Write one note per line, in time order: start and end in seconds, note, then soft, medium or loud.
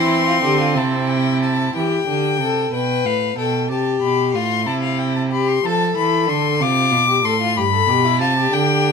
0.00 0.42 E3 medium
0.00 1.75 C4 loud
0.00 0.26 E4 medium
0.00 0.79 C6 medium
0.27 0.34 F4 medium
0.43 0.77 D3 medium
0.43 0.59 G4 medium
0.60 0.78 F4 medium
0.75 1.74 C3 loud
0.75 1.75 E4 medium
0.75 1.11 A5 medium
1.10 1.41 G5 medium
1.41 1.74 A5 medium
1.74 2.05 E3 medium
1.74 2.06 G4 medium
1.74 2.69 G5 medium
2.07 2.41 D3 medium
2.07 2.40 G4 medium
2.40 2.72 C3 medium
2.40 2.73 A4 medium
2.72 3.07 B2 medium
2.72 3.37 B4 medium
2.72 3.07 G5 medium
3.05 3.36 A2 medium
3.05 3.37 F5 medium
3.37 3.71 B2 medium
3.37 3.69 A4 medium
3.37 3.70 G5 medium
3.70 4.02 C3 medium
3.70 4.36 G4 medium
3.70 4.01 A5 medium
4.01 4.36 B2 medium
4.01 4.34 B5 medium
4.34 4.68 A2 medium
4.34 4.66 F4 medium
4.34 4.68 C6 medium
4.66 5.63 C3 medium
4.66 5.30 E4 medium
4.66 4.82 A5 medium
4.82 5.00 F5 medium
4.99 5.15 G5 medium
5.15 5.22 A5 medium
5.32 5.64 G4 medium
5.32 5.49 B5 medium
5.48 5.67 C6 medium
5.64 5.96 F3 medium
5.64 6.63 A4 medium
5.64 5.96 A5 medium
5.97 6.30 E3 medium
5.97 6.31 B5 medium
6.28 6.62 D3 medium
6.28 6.63 C6 medium
6.61 6.93 C3 medium
6.61 7.08 F4 medium
6.61 7.26 D6 loud
6.92 7.26 B2 medium
7.08 7.24 G4 medium
7.24 7.58 A2 medium
7.24 7.40 A4 medium
7.24 7.59 C6 medium
7.41 7.56 F4 medium
7.56 7.88 G2 medium
7.56 7.63 G4 medium
7.56 8.20 B5 loud
7.73 7.90 A4 medium
7.88 8.22 B2 medium
7.88 8.06 G4 medium
8.05 8.22 E4 medium
8.20 8.52 C3 medium
8.20 8.37 F4 medium
8.20 8.54 A5 loud
8.38 8.92 G4 medium
8.52 8.92 D3 medium
8.52 8.92 G5 medium